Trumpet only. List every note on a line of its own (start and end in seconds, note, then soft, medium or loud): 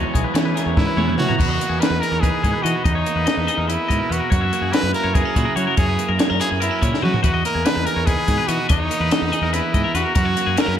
0.77 1.16 E4 medium
1.18 1.37 F#4 medium
1.39 1.82 F#4 medium
1.80 2.02 B4 medium
2.00 2.22 A#4 medium
2.20 2.64 G#4 medium
2.63 2.84 F#4 medium
2.85 3.70 D#4 medium
3.68 4.14 E4 medium
4.12 4.31 F#4 medium
4.32 4.75 F#4 medium
4.73 4.93 B4 medium
4.94 5.16 A#4 medium
5.14 5.58 G#4 medium
5.56 5.77 F#4 medium
5.78 6.11 G#4 medium
6.40 6.49 G#4 medium
6.62 7.00 E4 medium
7.04 7.22 F#4 medium
7.24 7.43 F#4 medium
7.46 7.67 A#4 medium
7.65 7.88 B4 medium
7.86 8.07 A#4 medium
8.06 8.49 G#4 medium
8.48 8.69 F#4 medium
8.70 9.55 D#4 medium
9.53 9.97 E4 medium
9.96 10.15 F#4 medium
10.16 10.61 F#4 medium
10.59 10.78 A#4 medium